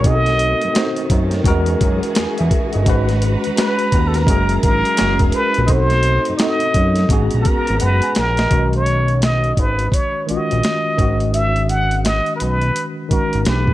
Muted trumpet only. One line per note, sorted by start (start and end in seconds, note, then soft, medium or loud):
0.07 1.11 D#5 loud
3.59 4.09 B4 medium
4.08 4.17 A4 medium
4.16 4.63 A#4 medium
4.64 5.30 A#4 loud
5.34 5.68 B4 loud
5.66 6.35 C5 loud
5.66 5.71 D#5 medium
6.36 6.42 D5 medium
6.41 7.11 D#5 loud
7.42 7.49 A4 medium
7.47 7.84 A#4 medium
7.83 8.20 B4 medium
8.18 8.75 A#4 loud
8.76 9.20 C#5 medium
9.24 9.61 D#5 medium
9.59 9.95 B4 medium
9.94 10.29 C#5 medium
10.29 11.30 D#5 medium
11.34 11.71 E5 loud
11.69 12.03 F#5 loud
12.04 12.32 D#5 medium
12.36 12.41 A#4 medium
12.36 12.85 B4 medium
13.10 13.48 A#4 medium
13.46 13.74 B4 medium